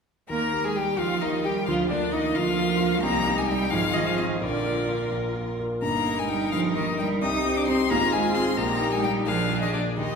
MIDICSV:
0, 0, Header, 1, 6, 480
1, 0, Start_track
1, 0, Key_signature, -3, "major"
1, 0, Tempo, 455927
1, 313, Time_signature, 6, 3, 24, 8
1, 3668, Tempo, 469484
1, 6068, Tempo, 457666
1, 9428, Tempo, 472813
1, 10563, End_track
2, 0, Start_track
2, 0, Title_t, "Violin"
2, 0, Program_c, 0, 40
2, 308, Note_on_c, 0, 82, 85
2, 673, Note_on_c, 0, 80, 81
2, 689, Note_off_c, 0, 82, 0
2, 797, Note_on_c, 0, 79, 84
2, 813, Note_off_c, 0, 80, 0
2, 1036, Note_on_c, 0, 77, 96
2, 1052, Note_off_c, 0, 79, 0
2, 1280, Note_on_c, 0, 75, 82
2, 1295, Note_off_c, 0, 77, 0
2, 1511, Note_on_c, 0, 79, 79
2, 1526, Note_off_c, 0, 75, 0
2, 1741, Note_off_c, 0, 79, 0
2, 1747, Note_on_c, 0, 77, 82
2, 1832, Note_off_c, 0, 77, 0
2, 1985, Note_on_c, 0, 74, 86
2, 2235, Note_on_c, 0, 75, 94
2, 2251, Note_off_c, 0, 74, 0
2, 2474, Note_on_c, 0, 77, 108
2, 2490, Note_off_c, 0, 75, 0
2, 3177, Note_off_c, 0, 77, 0
2, 3183, Note_on_c, 0, 82, 117
2, 3553, Note_on_c, 0, 80, 92
2, 3569, Note_off_c, 0, 82, 0
2, 3667, Note_on_c, 0, 79, 105
2, 3683, Note_off_c, 0, 80, 0
2, 3892, Note_on_c, 0, 77, 118
2, 3907, Note_off_c, 0, 79, 0
2, 4130, Note_on_c, 0, 75, 101
2, 4145, Note_off_c, 0, 77, 0
2, 4263, Note_on_c, 0, 77, 92
2, 4278, Note_off_c, 0, 75, 0
2, 4366, Note_off_c, 0, 77, 0
2, 4372, Note_on_c, 0, 75, 73
2, 4454, Note_off_c, 0, 75, 0
2, 4615, Note_on_c, 0, 74, 84
2, 5329, Note_off_c, 0, 74, 0
2, 6061, Note_on_c, 0, 82, 96
2, 6444, Note_on_c, 0, 80, 81
2, 6460, Note_off_c, 0, 82, 0
2, 6546, Note_on_c, 0, 79, 90
2, 6562, Note_off_c, 0, 80, 0
2, 6782, Note_off_c, 0, 79, 0
2, 6788, Note_on_c, 0, 77, 99
2, 6872, Note_off_c, 0, 77, 0
2, 7038, Note_on_c, 0, 75, 89
2, 7275, Note_off_c, 0, 75, 0
2, 7282, Note_on_c, 0, 79, 85
2, 7366, Note_off_c, 0, 79, 0
2, 7525, Note_on_c, 0, 87, 102
2, 7890, Note_on_c, 0, 86, 99
2, 7905, Note_off_c, 0, 87, 0
2, 7996, Note_off_c, 0, 86, 0
2, 8002, Note_on_c, 0, 84, 112
2, 8243, Note_on_c, 0, 82, 122
2, 8259, Note_off_c, 0, 84, 0
2, 8473, Note_on_c, 0, 80, 110
2, 8489, Note_off_c, 0, 82, 0
2, 8703, Note_on_c, 0, 84, 107
2, 8718, Note_off_c, 0, 80, 0
2, 8941, Note_on_c, 0, 82, 113
2, 8957, Note_off_c, 0, 84, 0
2, 9304, Note_on_c, 0, 80, 94
2, 9320, Note_off_c, 0, 82, 0
2, 9418, Note_off_c, 0, 80, 0
2, 9425, Note_on_c, 0, 79, 98
2, 9506, Note_off_c, 0, 79, 0
2, 9655, Note_on_c, 0, 77, 106
2, 10008, Note_off_c, 0, 77, 0
2, 10018, Note_on_c, 0, 75, 90
2, 10133, Note_off_c, 0, 75, 0
2, 10139, Note_on_c, 0, 74, 77
2, 10220, Note_off_c, 0, 74, 0
2, 10386, Note_on_c, 0, 75, 84
2, 10563, Note_off_c, 0, 75, 0
2, 10563, End_track
3, 0, Start_track
3, 0, Title_t, "Violin"
3, 0, Program_c, 1, 40
3, 315, Note_on_c, 1, 70, 69
3, 681, Note_on_c, 1, 68, 66
3, 697, Note_off_c, 1, 70, 0
3, 809, Note_on_c, 1, 67, 69
3, 825, Note_off_c, 1, 68, 0
3, 1047, Note_on_c, 1, 65, 69
3, 1062, Note_off_c, 1, 67, 0
3, 1271, Note_off_c, 1, 65, 0
3, 1277, Note_on_c, 1, 63, 65
3, 1515, Note_off_c, 1, 63, 0
3, 1529, Note_on_c, 1, 67, 80
3, 1614, Note_off_c, 1, 67, 0
3, 1771, Note_on_c, 1, 65, 82
3, 1991, Note_off_c, 1, 65, 0
3, 1997, Note_on_c, 1, 62, 71
3, 2237, Note_on_c, 1, 63, 73
3, 2253, Note_off_c, 1, 62, 0
3, 2479, Note_on_c, 1, 65, 85
3, 2494, Note_off_c, 1, 63, 0
3, 3182, Note_off_c, 1, 65, 0
3, 3189, Note_on_c, 1, 67, 72
3, 3920, Note_on_c, 1, 68, 71
3, 3935, Note_off_c, 1, 67, 0
3, 4625, Note_off_c, 1, 68, 0
3, 4631, Note_on_c, 1, 70, 58
3, 5841, Note_off_c, 1, 70, 0
3, 6078, Note_on_c, 1, 70, 63
3, 7483, Note_off_c, 1, 70, 0
3, 7521, Note_on_c, 1, 67, 70
3, 8233, Note_on_c, 1, 68, 70
3, 8249, Note_off_c, 1, 67, 0
3, 8946, Note_off_c, 1, 68, 0
3, 8956, Note_on_c, 1, 67, 81
3, 9664, Note_on_c, 1, 68, 66
3, 9679, Note_off_c, 1, 67, 0
3, 10386, Note_off_c, 1, 68, 0
3, 10397, Note_on_c, 1, 67, 65
3, 10563, Note_off_c, 1, 67, 0
3, 10563, End_track
4, 0, Start_track
4, 0, Title_t, "Viola"
4, 0, Program_c, 2, 41
4, 312, Note_on_c, 2, 70, 71
4, 678, Note_on_c, 2, 68, 71
4, 694, Note_off_c, 2, 70, 0
4, 796, Note_on_c, 2, 67, 81
4, 812, Note_off_c, 2, 68, 0
4, 1034, Note_on_c, 2, 65, 86
4, 1050, Note_off_c, 2, 67, 0
4, 1278, Note_on_c, 2, 63, 71
4, 1294, Note_off_c, 2, 65, 0
4, 1518, Note_on_c, 2, 67, 76
4, 1534, Note_off_c, 2, 63, 0
4, 1755, Note_off_c, 2, 67, 0
4, 1761, Note_on_c, 2, 65, 80
4, 1989, Note_off_c, 2, 65, 0
4, 1995, Note_on_c, 2, 62, 77
4, 2232, Note_on_c, 2, 63, 75
4, 2248, Note_off_c, 2, 62, 0
4, 2477, Note_on_c, 2, 65, 83
4, 2493, Note_off_c, 2, 63, 0
4, 3179, Note_off_c, 2, 65, 0
4, 3186, Note_on_c, 2, 63, 69
4, 3906, Note_on_c, 2, 65, 72
4, 3922, Note_off_c, 2, 63, 0
4, 4611, Note_off_c, 2, 65, 0
4, 4617, Note_on_c, 2, 65, 66
4, 5834, Note_off_c, 2, 65, 0
4, 6074, Note_on_c, 2, 63, 70
4, 7480, Note_off_c, 2, 63, 0
4, 7521, Note_on_c, 2, 63, 72
4, 8238, Note_on_c, 2, 65, 84
4, 8254, Note_off_c, 2, 63, 0
4, 8938, Note_off_c, 2, 65, 0
4, 8944, Note_on_c, 2, 63, 76
4, 9666, Note_on_c, 2, 62, 71
4, 9682, Note_off_c, 2, 63, 0
4, 10380, Note_off_c, 2, 62, 0
4, 10386, Note_on_c, 2, 63, 69
4, 10563, Note_off_c, 2, 63, 0
4, 10563, End_track
5, 0, Start_track
5, 0, Title_t, "Grand piano"
5, 0, Program_c, 3, 0
5, 311, Note_on_c, 3, 39, 59
5, 311, Note_on_c, 3, 51, 55
5, 499, Control_c, 3, 64, 127
5, 548, Note_off_c, 3, 39, 0
5, 548, Note_off_c, 3, 51, 0
5, 555, Note_on_c, 3, 58, 44
5, 556, Note_on_c, 3, 67, 47
5, 563, Note_on_c, 3, 70, 47
5, 774, Note_off_c, 3, 58, 0
5, 775, Note_off_c, 3, 67, 0
5, 779, Note_off_c, 3, 70, 0
5, 802, Note_on_c, 3, 58, 44
5, 807, Note_on_c, 3, 67, 47
5, 809, Note_on_c, 3, 70, 46
5, 1019, Note_off_c, 3, 58, 0
5, 1021, Note_off_c, 3, 67, 0
5, 1022, Note_off_c, 3, 70, 0
5, 1030, Note_on_c, 3, 39, 54
5, 1031, Note_on_c, 3, 51, 53
5, 1269, Note_off_c, 3, 39, 0
5, 1270, Note_off_c, 3, 51, 0
5, 1282, Note_on_c, 3, 58, 45
5, 1286, Note_on_c, 3, 67, 47
5, 1288, Note_on_c, 3, 70, 47
5, 1498, Note_off_c, 3, 58, 0
5, 1501, Note_off_c, 3, 67, 0
5, 1501, Note_off_c, 3, 70, 0
5, 1522, Note_on_c, 3, 58, 48
5, 1527, Note_on_c, 3, 67, 46
5, 1531, Note_on_c, 3, 70, 55
5, 1738, Note_off_c, 3, 58, 0
5, 1741, Note_off_c, 3, 67, 0
5, 1743, Note_off_c, 3, 70, 0
5, 1764, Note_on_c, 3, 38, 65
5, 1766, Note_on_c, 3, 50, 61
5, 1783, Control_c, 3, 64, 0
5, 1977, Control_c, 3, 64, 127
5, 1995, Note_off_c, 3, 38, 0
5, 1996, Note_off_c, 3, 50, 0
5, 2000, Note_on_c, 3, 58, 49
5, 2003, Note_on_c, 3, 65, 48
5, 2006, Note_on_c, 3, 70, 52
5, 2215, Note_off_c, 3, 58, 0
5, 2217, Note_off_c, 3, 65, 0
5, 2219, Note_off_c, 3, 70, 0
5, 2239, Note_on_c, 3, 58, 50
5, 2243, Note_on_c, 3, 65, 44
5, 2245, Note_on_c, 3, 70, 49
5, 2452, Note_off_c, 3, 58, 0
5, 2454, Note_off_c, 3, 65, 0
5, 2456, Note_off_c, 3, 70, 0
5, 2474, Note_on_c, 3, 38, 58
5, 2476, Note_on_c, 3, 50, 63
5, 2704, Note_off_c, 3, 38, 0
5, 2705, Note_off_c, 3, 50, 0
5, 2715, Note_on_c, 3, 58, 55
5, 2724, Note_on_c, 3, 65, 53
5, 2728, Note_on_c, 3, 70, 58
5, 2927, Note_off_c, 3, 58, 0
5, 2932, Note_off_c, 3, 65, 0
5, 2934, Note_off_c, 3, 70, 0
5, 2948, Note_on_c, 3, 58, 57
5, 2951, Note_on_c, 3, 65, 59
5, 2955, Note_on_c, 3, 70, 66
5, 3163, Note_off_c, 3, 58, 0
5, 3164, Note_off_c, 3, 65, 0
5, 3167, Note_off_c, 3, 70, 0
5, 3190, Note_on_c, 3, 36, 84
5, 3190, Note_on_c, 3, 48, 68
5, 3206, Control_c, 3, 64, 0
5, 3399, Control_c, 3, 64, 127
5, 3421, Note_off_c, 3, 36, 0
5, 3421, Note_off_c, 3, 48, 0
5, 3433, Note_on_c, 3, 55, 61
5, 3439, Note_on_c, 3, 63, 54
5, 3441, Note_on_c, 3, 75, 57
5, 3648, Note_off_c, 3, 55, 0
5, 3651, Note_off_c, 3, 63, 0
5, 3652, Note_off_c, 3, 75, 0
5, 3676, Note_on_c, 3, 55, 51
5, 3681, Note_on_c, 3, 63, 53
5, 3683, Note_on_c, 3, 75, 59
5, 3886, Note_off_c, 3, 55, 0
5, 3889, Note_off_c, 3, 63, 0
5, 3890, Note_off_c, 3, 75, 0
5, 3907, Note_on_c, 3, 44, 81
5, 3912, Note_on_c, 3, 32, 72
5, 3925, Control_c, 3, 64, 0
5, 4102, Control_c, 3, 64, 127
5, 4137, Note_off_c, 3, 44, 0
5, 4139, Note_off_c, 3, 32, 0
5, 4150, Note_on_c, 3, 60, 54
5, 4153, Note_on_c, 3, 65, 51
5, 4157, Note_on_c, 3, 75, 59
5, 4361, Note_off_c, 3, 60, 0
5, 4363, Note_off_c, 3, 65, 0
5, 4366, Note_off_c, 3, 75, 0
5, 4383, Note_on_c, 3, 60, 59
5, 4389, Note_on_c, 3, 65, 58
5, 4396, Note_on_c, 3, 75, 60
5, 4599, Note_off_c, 3, 60, 0
5, 4602, Note_off_c, 3, 65, 0
5, 4606, Note_off_c, 3, 75, 0
5, 4617, Note_on_c, 3, 46, 72
5, 4619, Note_on_c, 3, 34, 62
5, 4641, Control_c, 3, 64, 0
5, 4827, Control_c, 3, 64, 127
5, 4855, Note_off_c, 3, 46, 0
5, 4856, Note_off_c, 3, 34, 0
5, 4861, Note_on_c, 3, 58, 47
5, 4867, Note_on_c, 3, 65, 44
5, 4872, Note_on_c, 3, 70, 47
5, 5080, Note_off_c, 3, 58, 0
5, 5083, Note_off_c, 3, 65, 0
5, 5086, Note_off_c, 3, 70, 0
5, 5098, Note_on_c, 3, 58, 42
5, 5104, Note_on_c, 3, 65, 47
5, 5107, Note_on_c, 3, 70, 49
5, 5318, Note_off_c, 3, 58, 0
5, 5322, Note_off_c, 3, 65, 0
5, 5324, Note_off_c, 3, 70, 0
5, 5337, Note_on_c, 3, 34, 57
5, 5340, Note_on_c, 3, 46, 58
5, 5576, Note_off_c, 3, 34, 0
5, 5577, Note_off_c, 3, 46, 0
5, 5578, Note_on_c, 3, 58, 48
5, 5580, Note_on_c, 3, 65, 44
5, 5585, Note_on_c, 3, 70, 51
5, 5800, Note_off_c, 3, 58, 0
5, 5801, Note_off_c, 3, 65, 0
5, 5804, Note_off_c, 3, 70, 0
5, 5819, Note_on_c, 3, 58, 47
5, 5826, Note_on_c, 3, 65, 50
5, 5829, Note_on_c, 3, 70, 51
5, 6040, Note_off_c, 3, 58, 0
5, 6044, Note_off_c, 3, 65, 0
5, 6045, Note_off_c, 3, 70, 0
5, 6056, Note_on_c, 3, 43, 69
5, 6058, Note_on_c, 3, 31, 58
5, 6089, Control_c, 3, 64, 0
5, 6243, Control_c, 3, 64, 127
5, 6299, Note_off_c, 3, 43, 0
5, 6300, Note_off_c, 3, 31, 0
5, 6309, Note_on_c, 3, 58, 50
5, 6316, Note_on_c, 3, 63, 50
5, 6320, Note_on_c, 3, 70, 57
5, 6529, Note_off_c, 3, 58, 0
5, 6533, Note_off_c, 3, 63, 0
5, 6536, Note_off_c, 3, 70, 0
5, 6553, Note_on_c, 3, 58, 47
5, 6557, Note_on_c, 3, 63, 48
5, 6560, Note_on_c, 3, 70, 53
5, 6773, Note_off_c, 3, 58, 0
5, 6775, Note_off_c, 3, 63, 0
5, 6777, Note_off_c, 3, 70, 0
5, 6798, Note_on_c, 3, 31, 60
5, 6799, Note_on_c, 3, 43, 58
5, 7033, Note_off_c, 3, 31, 0
5, 7034, Note_off_c, 3, 43, 0
5, 7041, Note_on_c, 3, 58, 55
5, 7045, Note_on_c, 3, 63, 54
5, 7049, Note_on_c, 3, 70, 52
5, 7257, Note_off_c, 3, 58, 0
5, 7260, Note_off_c, 3, 63, 0
5, 7261, Note_off_c, 3, 70, 0
5, 7276, Note_on_c, 3, 58, 58
5, 7281, Note_on_c, 3, 63, 57
5, 7285, Note_on_c, 3, 70, 60
5, 7494, Note_off_c, 3, 58, 0
5, 7496, Note_off_c, 3, 63, 0
5, 7498, Note_off_c, 3, 70, 0
5, 7521, Note_on_c, 3, 36, 73
5, 7521, Note_on_c, 3, 48, 64
5, 7540, Control_c, 3, 64, 0
5, 7705, Control_c, 3, 64, 127
5, 7753, Note_off_c, 3, 36, 0
5, 7753, Note_off_c, 3, 48, 0
5, 7766, Note_on_c, 3, 60, 58
5, 7770, Note_on_c, 3, 63, 57
5, 7773, Note_on_c, 3, 67, 61
5, 7979, Note_off_c, 3, 60, 0
5, 7981, Note_off_c, 3, 63, 0
5, 7983, Note_off_c, 3, 67, 0
5, 8002, Note_on_c, 3, 60, 52
5, 8009, Note_on_c, 3, 63, 56
5, 8013, Note_on_c, 3, 67, 66
5, 8215, Note_off_c, 3, 60, 0
5, 8219, Note_off_c, 3, 63, 0
5, 8221, Note_off_c, 3, 67, 0
5, 8247, Note_on_c, 3, 44, 73
5, 8248, Note_on_c, 3, 32, 72
5, 8257, Control_c, 3, 64, 0
5, 8400, Control_c, 3, 64, 127
5, 8471, Note_off_c, 3, 44, 0
5, 8472, Note_off_c, 3, 32, 0
5, 8485, Note_on_c, 3, 60, 57
5, 8490, Note_on_c, 3, 65, 64
5, 8496, Note_on_c, 3, 68, 66
5, 8693, Note_off_c, 3, 60, 0
5, 8696, Note_off_c, 3, 65, 0
5, 8699, Note_off_c, 3, 68, 0
5, 8716, Note_on_c, 3, 60, 62
5, 8719, Note_on_c, 3, 65, 62
5, 8725, Note_on_c, 3, 68, 69
5, 8928, Note_off_c, 3, 60, 0
5, 8930, Note_off_c, 3, 65, 0
5, 8933, Note_off_c, 3, 68, 0
5, 8948, Note_on_c, 3, 34, 71
5, 8950, Note_on_c, 3, 46, 79
5, 8967, Control_c, 3, 64, 0
5, 9150, Control_c, 3, 64, 127
5, 9182, Note_off_c, 3, 34, 0
5, 9182, Note_off_c, 3, 46, 0
5, 9188, Note_on_c, 3, 58, 59
5, 9193, Note_on_c, 3, 63, 54
5, 9197, Note_on_c, 3, 67, 62
5, 9405, Note_off_c, 3, 58, 0
5, 9408, Note_off_c, 3, 63, 0
5, 9410, Note_off_c, 3, 67, 0
5, 9431, Note_on_c, 3, 58, 52
5, 9433, Note_on_c, 3, 63, 52
5, 9438, Note_on_c, 3, 67, 57
5, 9641, Note_off_c, 3, 58, 0
5, 9642, Note_off_c, 3, 63, 0
5, 9645, Note_off_c, 3, 67, 0
5, 9671, Note_on_c, 3, 46, 67
5, 9674, Note_on_c, 3, 34, 64
5, 9682, Control_c, 3, 64, 0
5, 9847, Control_c, 3, 64, 127
5, 9897, Note_off_c, 3, 46, 0
5, 9899, Note_off_c, 3, 34, 0
5, 9904, Note_on_c, 3, 58, 52
5, 9911, Note_on_c, 3, 62, 52
5, 9914, Note_on_c, 3, 68, 56
5, 10119, Note_off_c, 3, 58, 0
5, 10122, Note_off_c, 3, 62, 0
5, 10124, Note_off_c, 3, 68, 0
5, 10144, Note_on_c, 3, 58, 53
5, 10148, Note_on_c, 3, 62, 51
5, 10151, Note_on_c, 3, 68, 53
5, 10363, Note_off_c, 3, 58, 0
5, 10365, Note_off_c, 3, 62, 0
5, 10367, Note_off_c, 3, 68, 0
5, 10383, Note_on_c, 3, 39, 61
5, 10386, Note_on_c, 3, 51, 64
5, 10405, Control_c, 3, 64, 0
5, 10563, Note_off_c, 3, 39, 0
5, 10563, Note_off_c, 3, 51, 0
5, 10563, End_track
6, 0, Start_track
6, 0, Title_t, "Cello"
6, 0, Program_c, 4, 42
6, 305, Note_on_c, 4, 58, 77
6, 648, Note_off_c, 4, 58, 0
6, 663, Note_on_c, 4, 56, 63
6, 798, Note_on_c, 4, 55, 69
6, 814, Note_off_c, 4, 56, 0
6, 1038, Note_on_c, 4, 53, 73
6, 1053, Note_off_c, 4, 55, 0
6, 1277, Note_on_c, 4, 51, 62
6, 1293, Note_off_c, 4, 53, 0
6, 1508, Note_off_c, 4, 51, 0
6, 1514, Note_on_c, 4, 55, 72
6, 1748, Note_on_c, 4, 53, 81
6, 1763, Note_off_c, 4, 55, 0
6, 1990, Note_on_c, 4, 50, 66
6, 2006, Note_off_c, 4, 53, 0
6, 2245, Note_on_c, 4, 51, 72
6, 2261, Note_off_c, 4, 50, 0
6, 2464, Note_off_c, 4, 51, 0
6, 2471, Note_on_c, 4, 53, 87
6, 3174, Note_on_c, 4, 58, 89
6, 3190, Note_off_c, 4, 53, 0
6, 3531, Note_off_c, 4, 58, 0
6, 3537, Note_on_c, 4, 56, 65
6, 3588, Note_off_c, 4, 56, 0
6, 3663, Note_on_c, 4, 55, 91
6, 3898, Note_off_c, 4, 55, 0
6, 3902, Note_on_c, 4, 53, 86
6, 3984, Note_off_c, 4, 53, 0
6, 4117, Note_on_c, 4, 51, 72
6, 4241, Note_on_c, 4, 53, 69
6, 4256, Note_off_c, 4, 51, 0
6, 4369, Note_on_c, 4, 51, 75
6, 4385, Note_off_c, 4, 53, 0
6, 4605, Note_off_c, 4, 51, 0
6, 4611, Note_on_c, 4, 50, 74
6, 5327, Note_off_c, 4, 50, 0
6, 6078, Note_on_c, 4, 58, 72
6, 6442, Note_on_c, 4, 56, 68
6, 6458, Note_off_c, 4, 58, 0
6, 6555, Note_off_c, 4, 56, 0
6, 6561, Note_on_c, 4, 55, 68
6, 6786, Note_off_c, 4, 55, 0
6, 6792, Note_on_c, 4, 53, 82
6, 7033, Note_off_c, 4, 53, 0
6, 7041, Note_on_c, 4, 51, 68
6, 7125, Note_off_c, 4, 51, 0
6, 7283, Note_on_c, 4, 55, 84
6, 7527, Note_on_c, 4, 63, 85
6, 7543, Note_off_c, 4, 55, 0
6, 7887, Note_on_c, 4, 62, 94
6, 7903, Note_off_c, 4, 63, 0
6, 8003, Note_off_c, 4, 62, 0
6, 8015, Note_on_c, 4, 60, 88
6, 8099, Note_off_c, 4, 60, 0
6, 8247, Note_on_c, 4, 58, 95
6, 8331, Note_off_c, 4, 58, 0
6, 8484, Note_on_c, 4, 56, 83
6, 8711, Note_off_c, 4, 56, 0
6, 8721, Note_on_c, 4, 60, 92
6, 8805, Note_off_c, 4, 60, 0
6, 8958, Note_on_c, 4, 58, 80
6, 9307, Note_off_c, 4, 58, 0
6, 9311, Note_on_c, 4, 56, 78
6, 9430, Note_on_c, 4, 55, 82
6, 9445, Note_off_c, 4, 56, 0
6, 9661, Note_off_c, 4, 55, 0
6, 9667, Note_on_c, 4, 53, 81
6, 10008, Note_off_c, 4, 53, 0
6, 10014, Note_on_c, 4, 51, 65
6, 10063, Note_off_c, 4, 51, 0
6, 10131, Note_on_c, 4, 50, 68
6, 10212, Note_off_c, 4, 50, 0
6, 10382, Note_on_c, 4, 51, 70
6, 10563, Note_off_c, 4, 51, 0
6, 10563, End_track
0, 0, End_of_file